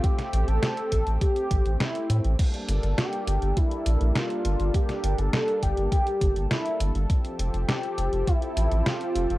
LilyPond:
<<
  \new Staff \with { instrumentName = "Analog synth lead" } { \time 4/4 \key g \dorian \tempo 4 = 102 g'8. a'8. a'8 g'4 e'8. r16 | r4 g'4 e'4 f'4 | g'8. a'8. g'8 g'4 e'8. r16 | r4 g'4 e'4 f'4 | }
  \new Staff \with { instrumentName = "Analog synth pad" } { \time 4/4 \key g \dorian <a c' g'>1 | <g bes d' a'>1~ | <g bes d' a'>1 | <f c' g'>1 | }
  \new Staff \with { instrumentName = "Analog synth bass" } { \clef bass \time 4/4 \key g \dorian r8 a,,16 a,,16 r8 a,,16 a,,16 r8 a,,16 a,,16 r8 a,16 a,,16 | r8 g,,16 g,,16 r8 g,,16 g,,16 r8 bes,,16 bes,,16 r8 g,,16 g,,16 | r8 g,,16 g,,16 r8 g,,16 g,,16 r8 g,,16 g,,16 r8 g,,16 g,,16 | r8 f,,16 f,,16 r8 f,,16 f,,16 r8 a,,16 a,,16 r8 f,,16 f,,16 | }
  \new DrumStaff \with { instrumentName = "Drums" } \drummode { \time 4/4 <hh bd>16 <hh sn>16 hh16 hh16 <hh sn>16 hh16 <hh bd>16 hh16 <hh bd>16 hh16 <hh bd>16 hh16 <hh sn>16 hh16 hh16 hh16 | <cymc hh bd>16 hh16 hh16 hh16 <hh sn>16 hh16 hh16 hh16 <hh bd>16 hh16 hh16 hh16 <hh sn>16 hh16 hh16 hh16 | <hh bd>16 <hh sn>16 hh16 hh16 <hh sn>16 hh16 <hh bd>16 hh16 <hh bd>16 hh16 <hh bd>16 hh16 <hh sn>16 hh16 hh16 hh16 | <hh bd>16 hh16 hh16 hh16 <hh sn>16 hh16 hh16 hh16 <hh bd>16 hh16 hh16 hh16 <hh sn>16 hh16 hh16 hh16 | }
>>